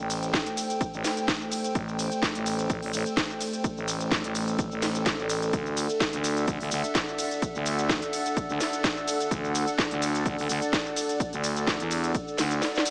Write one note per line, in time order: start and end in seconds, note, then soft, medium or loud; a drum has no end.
0.00 0.44 A1 loud
0.00 5.49 A3 medium
0.00 5.49 A4 medium
0.00 12.90 A4 medium
0.00 5.49 C5 medium
0.00 12.90 D5 medium
0.00 5.49 G5 loud
0.00 5.53 G5 medium
0.10 open hi-hat loud
0.10 ride medium
0.10 shaker medium
0.23 closed hi-hat medium
0.23 shaker soft
0.33 kick loud
0.33 snare loud
0.33 shaker soft
0.46 closed hi-hat medium
0.46 shaker soft
0.57 open hi-hat loud
0.57 ride medium
0.57 shaker medium
0.70 closed hi-hat medium
0.70 shaker soft
0.81 kick loud
0.81 closed hi-hat medium
0.81 shaker soft
0.94 1.03 A1 loud
0.94 shaker soft
1.04 snare medium
1.04 open hi-hat loud
1.04 ride medium
1.04 shaker medium
1.17 closed hi-hat medium
1.17 shaker soft
1.28 kick loud
1.28 snare loud
1.28 closed hi-hat medium
1.28 shaker soft
1.41 shaker soft
1.52 open hi-hat loud
1.52 ride medium
1.52 shaker medium
1.64 closed hi-hat medium
1.64 shaker soft
1.75 2.10 A1 loud
1.75 kick loud
1.75 closed hi-hat medium
1.75 shaker soft
1.88 shaker soft
1.99 open hi-hat loud
1.99 ride medium
1.99 shaker medium
2.12 closed hi-hat medium
2.12 shaker soft
2.22 kick loud
2.22 snare loud
2.22 shaker soft
2.35 2.68 A1 loud
2.35 closed hi-hat medium
2.35 shaker soft
2.46 open hi-hat loud
2.46 ride medium
2.46 shaker medium
2.59 closed hi-hat medium
2.59 shaker soft
2.70 2.81 A1 loud
2.70 kick loud
2.70 closed hi-hat medium
2.70 shaker soft
2.83 2.92 A1 loud
2.83 open hi-hat medium
2.83 shaker soft
2.93 3.04 A1 loud
2.93 open hi-hat loud
2.93 ride medium
2.93 shaker medium
3.06 closed hi-hat medium
3.06 shaker soft
3.17 kick loud
3.17 snare loud
3.17 closed hi-hat medium
3.17 shaker soft
3.30 shaker soft
3.41 open hi-hat loud
3.41 ride medium
3.41 shaker medium
3.53 closed hi-hat medium
3.53 shaker soft
3.64 kick loud
3.64 closed hi-hat medium
3.64 shaker soft
3.77 4.22 A1 loud
3.77 shaker soft
3.88 open hi-hat loud
3.88 ride medium
3.88 shaker medium
4.01 closed hi-hat medium
4.01 shaker soft
4.11 kick loud
4.11 snare loud
4.11 shaker soft
4.24 4.69 A1 loud
4.24 closed hi-hat medium
4.24 shaker soft
4.35 open hi-hat loud
4.35 ride medium
4.35 shaker medium
4.48 closed hi-hat medium
4.48 shaker soft
4.59 kick loud
4.59 closed hi-hat medium
4.59 shaker soft
4.72 5.17 A1 loud
4.72 shaker soft
4.82 snare medium
4.82 open hi-hat loud
4.82 ride medium
4.82 shaker medium
4.95 closed hi-hat soft
4.95 shaker soft
5.06 kick loud
5.06 snare loud
5.06 closed hi-hat medium
5.06 shaker soft
5.19 5.51 A1 loud
5.19 shaker soft
5.29 open hi-hat loud
5.29 ride medium
5.29 shaker medium
5.42 closed hi-hat medium
5.42 shaker soft
5.53 5.88 D2 loud
5.53 12.90 D4 medium
5.53 12.90 A4 medium
5.53 9.27 E5 medium
5.53 12.90 F#5 loud
5.53 kick loud
5.53 closed hi-hat medium
5.53 shaker soft
5.66 shaker soft
5.77 open hi-hat loud
5.77 ride medium
5.77 shaker medium
5.90 closed hi-hat medium
5.90 shaker soft
6.00 kick loud
6.00 snare loud
6.00 shaker soft
6.13 6.46 D2 loud
6.13 closed hi-hat medium
6.13 shaker soft
6.24 12.90 F#5 medium
6.24 open hi-hat loud
6.24 ride medium
6.24 shaker medium
6.37 closed hi-hat medium
6.37 shaker soft
6.48 6.58 D2 loud
6.48 kick loud
6.48 closed hi-hat medium
6.48 shaker soft
6.60 6.70 D2 loud
6.60 open hi-hat medium
6.60 shaker soft
6.71 6.82 D2 loud
6.71 open hi-hat loud
6.71 ride medium
6.71 shaker medium
6.84 closed hi-hat medium
6.84 shaker soft
6.95 kick loud
6.95 snare loud
6.95 closed hi-hat medium
6.95 shaker soft
7.08 shaker soft
7.18 open hi-hat loud
7.18 ride medium
7.18 shaker medium
7.31 closed hi-hat medium
7.31 shaker soft
7.42 kick loud
7.42 closed hi-hat medium
7.42 shaker soft
7.55 8.00 D2 loud
7.55 shaker soft
7.66 open hi-hat loud
7.66 ride medium
7.66 shaker medium
7.79 closed hi-hat medium
7.79 shaker soft
7.89 kick loud
7.89 snare loud
7.89 shaker soft
8.02 closed hi-hat medium
8.02 shaker soft
8.13 open hi-hat loud
8.13 ride medium
8.13 shaker medium
8.26 closed hi-hat medium
8.26 shaker soft
8.37 kick loud
8.37 closed hi-hat medium
8.37 shaker soft
8.50 8.59 D2 loud
8.50 shaker soft
8.60 snare medium
8.60 open hi-hat loud
8.60 ride medium
8.60 shaker medium
8.73 closed hi-hat medium
8.73 shaker soft
8.84 kick loud
8.84 snare loud
8.84 closed hi-hat medium
8.84 shaker soft
8.97 shaker soft
9.08 open hi-hat loud
9.08 ride medium
9.08 shaker medium
9.20 closed hi-hat medium
9.20 shaker soft
9.31 9.66 D2 loud
9.31 12.90 D5 medium
9.31 kick loud
9.31 closed hi-hat medium
9.31 shaker soft
9.44 shaker soft
9.55 open hi-hat loud
9.55 ride medium
9.55 shaker medium
9.68 closed hi-hat medium
9.68 shaker soft
9.78 kick loud
9.78 snare loud
9.78 shaker soft
9.91 10.24 D2 loud
9.91 closed hi-hat medium
9.91 shaker soft
10.02 open hi-hat loud
10.02 ride medium
10.02 shaker medium
10.15 closed hi-hat medium
10.15 shaker soft
10.26 10.36 D2 loud
10.26 kick loud
10.26 closed hi-hat medium
10.26 shaker soft
10.38 10.48 D2 loud
10.38 open hi-hat medium
10.38 shaker soft
10.49 10.60 D2 loud
10.49 open hi-hat loud
10.49 ride medium
10.49 shaker medium
10.62 closed hi-hat medium
10.62 shaker soft
10.73 kick loud
10.73 snare loud
10.73 closed hi-hat medium
10.73 shaker soft
10.86 shaker soft
10.96 open hi-hat loud
10.96 ride medium
10.96 shaker medium
11.09 closed hi-hat medium
11.09 shaker soft
11.20 kick loud
11.20 closed hi-hat medium
11.20 shaker soft
11.33 11.78 D2 loud
11.33 closed hi-hat soft
11.33 shaker soft
11.44 open hi-hat loud
11.44 ride medium
11.44 shaker medium
11.56 closed hi-hat medium
11.56 shaker soft
11.67 kick loud
11.67 snare loud
11.67 shaker soft
11.80 12.13 E2 loud
11.80 closed hi-hat medium
11.80 shaker soft
11.91 open hi-hat loud
11.91 ride medium
11.91 shaker medium
12.04 closed hi-hat medium
12.04 shaker soft
12.15 kick loud
12.15 closed hi-hat medium
12.15 shaker soft
12.28 shaker soft
12.38 12.62 D2 loud
12.38 snare medium
12.38 open hi-hat loud
12.38 ride medium
12.38 shaker medium
12.51 closed hi-hat medium
12.51 shaker soft
12.62 snare medium
12.62 open hi-hat medium
12.62 shaker soft
12.75 snare medium
12.75 shaker soft
12.85 open hi-hat loud
12.85 ride medium
12.85 shaker medium